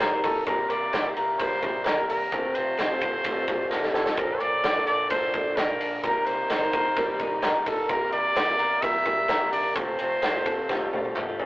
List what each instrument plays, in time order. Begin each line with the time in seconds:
Already playing: clean electric guitar C3 G3 A#3 D#4, steel-string acoustic guitar G3 A#3 D#4 G4, trumpet C5
0.00 fingered electric bass C2, clean electric guitar A#4, snare, clap, ride
0.12 steel-string acoustic guitar C3 G3 A#3 D#4 G4
0.23 fingered electric bass C2, clean electric guitar D#4, trumpet A4, kick, open hi-hat, ride
0.46 fingered electric bass C2, steel-string acoustic guitar C3 G3 A#3 E4 G4, clean electric guitar C3 A#4, trumpet A#4, kick, hi-hat pedal, ride
0.70 fingered electric bass C2, steel-string acoustic guitar G3 A#3 E4 G4, clean electric guitar A#3, trumpet D5, ride
0.93 fingered electric bass C2, clean electric guitar E4, snare, clap, ride
1.04 steel-string acoustic guitar C3 G3 A#3 E4 G4
1.17 fingered electric bass C2, clean electric guitar A#4, ride
1.39 fingered electric bass C2, steel-string acoustic guitar C3 G3 A#3 E4 G4, clean electric guitar G3, trumpet C5, kick, ride
1.62 fingered electric bass A#1, steel-string acoustic guitar G3 A#3 E4 G4, clean electric guitar E4, kick, ride
1.85 fingered electric bass C2, trumpet A#4, clean electric guitar A#4, snare, clap, ride
1.98 steel-string acoustic guitar C3 G3 A#3 E4 G4
2.08 fingered electric bass C2, clean electric guitar E4, trumpet A#4, open hi-hat, ride
2.32 fingered electric bass C2, steel-string acoustic guitar C3 A3 C4 F4 G4, clean electric guitar C3 A4, kick, hi-hat pedal, ride
2.55 fingered electric bass C2, steel-string acoustic guitar A3 C4 F4 G4, clean electric guitar C4, trumpet C5, ride
2.78 fingered electric bass C2, clean electric guitar F4, snare, clap, ride
2.90 steel-string acoustic guitar C3 A3 C4 F4 G4
3.01 fingered electric bass C2, clean electric guitar A4, kick, ride
3.24 fingered electric bass C2, steel-string acoustic guitar C3 A3 C4 F4 G4, clean electric guitar G3, kick, ride
3.47 fingered electric bass A#1, steel-string acoustic guitar A3 C4 F4 G4, clean electric guitar F4, kick, clap, ride
3.70 fingered electric bass C2, clean electric guitar A4, trumpet A#4, snare, clap
3.83 steel-string acoustic guitar C3 A3 C4 F4 G4, snare
3.89 trumpet A#4
3.93 fingered electric bass C2, clean electric guitar F4, trumpet A4, snare
4.06 snare
4.17 fingered electric bass A#1, clean electric guitar A#2 A4, steel-string acoustic guitar A#2 D3 F3 A#3 D4 A4, trumpet A#4, kick, hi-hat pedal, ride
4.40 fingered electric bass A#1, steel-string acoustic guitar F3 A#3 D4 A4, clean electric guitar A#3, trumpet D5, ride
4.64 fingered electric bass A#1, clean electric guitar D4, snare, clap, ride
4.75 steel-string acoustic guitar A#2 D3 F3 A#3 D4 A4
4.86 fingered electric bass A#1, clean electric guitar A4, trumpet D5, ride
5.10 fingered electric bass A#1, steel-string acoustic guitar A#2 D3 F3 A#3 D4 A4, clean electric guitar F3, trumpet C5, kick, ride
5.34 fingered electric bass A1, steel-string acoustic guitar F3 A#3 D4 A4, clean electric guitar D4, kick, ride
5.57 fingered electric bass A#1, trumpet A#4, snare, clap, ride
5.69 steel-string acoustic guitar A#2 D3 F3 A#3 D4
5.80 fingered electric bass A#1, clean electric guitar D4, open hi-hat, ride
6.03 fingered electric bass C2, clean electric guitar C3 A#4, steel-string acoustic guitar C3 G3 A#3 D#4 A#4, trumpet A#4, kick, hi-hat pedal, ride
6.26 fingered electric bass C2, steel-string acoustic guitar G3 A#3 D#4 A#4, clean electric guitar A#3, trumpet C5, ride
6.50 fingered electric bass C2, clean electric guitar D#4, snare, clap, ride
6.62 steel-string acoustic guitar C3 G3 A#3 D#4 A#4
6.73 fingered electric bass C2, clean electric guitar A#4, kick, ride
6.96 fingered electric bass C2, steel-string acoustic guitar C3 G3 A#3 D#4 A#4, clean electric guitar G3, kick, ride
7.19 fingered electric bass A#1, steel-string acoustic guitar G3 A#3 D#4 A#4, clean electric guitar D#4, kick, ride
7.42 fingered electric bass C2, clean electric guitar A#4, snare, clap, ride
7.55 steel-string acoustic guitar C3 G3 A#3 D#4 A#4
7.66 fingered electric bass C2, clean electric guitar D#4, trumpet A4, kick, open hi-hat, ride
7.89 fingered electric bass C2, clean electric guitar C3 A#4, steel-string acoustic guitar C3 G3 A#3 E4 G4, trumpet A#4, kick, hi-hat pedal, ride
8.12 fingered electric bass C2, steel-string acoustic guitar G3 A#3 E4 G4, clean electric guitar A#3, trumpet D5, ride
8.36 fingered electric bass C2, clean electric guitar D4, snare, clap, ride
8.47 steel-string acoustic guitar C3 G3 A#3 E4 G4, clean electric guitar E4
8.58 fingered electric bass C2, clean electric guitar A#4, ride
8.82 fingered electric bass C2, steel-string acoustic guitar C3 G3 A#3 E4 G4, clean electric guitar G3, trumpet E5, kick, ride
9.05 fingered electric bass A#1, steel-string acoustic guitar G3 A#3 E4 G4, clean electric guitar E4, kick, ride
9.29 fingered electric bass C2, clean electric guitar A#4, snare, clap, ride
9.41 steel-string acoustic guitar C3 G3 A#3 E4 G4
9.52 fingered electric bass C2, clean electric guitar D4, trumpet D5, open hi-hat, ride
9.63 clean electric guitar E4
9.74 fingered electric bass C2, clean electric guitar C3 A4, steel-string acoustic guitar C3 A3 C4 F4 G4, trumpet C5, kick, hi-hat pedal, ride
9.99 fingered electric bass C2, steel-string acoustic guitar A3 C4 F4 G4, clean electric guitar C4, ride
10.22 fingered electric bass C2, clean electric guitar F4, snare, clap, ride
10.34 steel-string acoustic guitar C3 A3 C4 F4 G4
10.45 fingered electric bass C2, clean electric guitar A4, kick, ride
10.69 fingered electric bass C2, steel-string acoustic guitar C3 A3 C4 F4 G4, clean electric guitar G3, kick, snare
10.92 fingered electric bass A#1, steel-string acoustic guitar A3 C4 F4 G4, clean electric guitar F4, high tom
11.05 high tom
11.16 fingered electric bass C2, clean electric guitar A4, clap, mid tom
11.28 steel-string acoustic guitar C3 A3 C4 F4 G4
11.39 fingered electric bass C2, clean electric guitar F4, floor tom